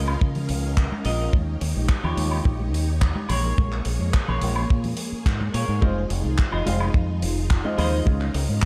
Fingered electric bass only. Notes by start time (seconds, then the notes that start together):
Already playing: C#2
0.21 C#3
0.49 C#2
1.05 A#1
1.33 D#2
1.61 D#2
1.76 A#1
2.04 D#2
2.17 D#2
2.45 A#1
2.73 D#2
3.29 A#1
3.58 A#1
3.85 A#1
4.00 F2
4.28 A#1
4.42 A#1
4.70 A#2
5.12 muted fingered electric bass stroke
5.26 G#2
5.54 A#2
5.69 G#2
5.82 F1
6.10 F1
6.25 C2
6.53 F1
6.66 F1
6.94 F2
7.22 F1
7.78 D#2
8.07 C#2
8.34 C#2
8.49 G#2